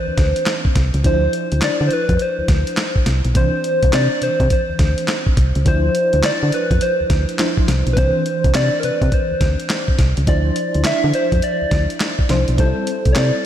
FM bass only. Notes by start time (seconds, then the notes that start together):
0.08 D2
0.18 D2
0.76 C2
0.94 C#2
1.05 D2
1.52 D2
1.62 D3
1.81 D3
2.09 F2
2.39 D2
2.49 D2
3.07 C2
3.25 B1
3.35 C2
3.83 C2
3.93 C3
4.22 C3
4.40 C3
4.69 D2
4.79 D2
5.37 C2
5.56 C#2
5.66 D2
6.14 D2
6.24 D3
6.43 D3
6.71 F2
7.01 D2
7.10 D2
7.68 C2
7.87 B1
7.97 C2
8.45 C2
8.55 C3
8.84 C3
9.02 C3
9.31 D2
9.41 D2
9.99 C2
10.18 C#2
10.28 D2
10.75 D2
10.86 D3
11.04 D3
11.32 F2
11.62 D2
11.72 D2
12.30 C2
12.49 B1
12.58 C2
13.06 C2
13.16 C3